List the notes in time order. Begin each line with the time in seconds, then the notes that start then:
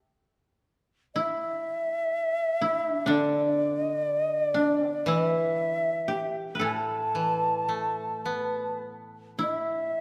Already playing: G4
1.14 E4 E5
2.61 E4
2.90 D4
3.06 D3 D4
3.10 D5
3.78 C#4 D#5
3.90 C4
4.00 B3 D5
4.20 D#5
4.40 D5
4.54 D4
4.87 B3
5.06 E3 E4 E5
6.08 G4
6.55 B4
6.59 A2 A4 A5
7.15 E3
7.69 A3
8.25 B3
9.39 E4 E5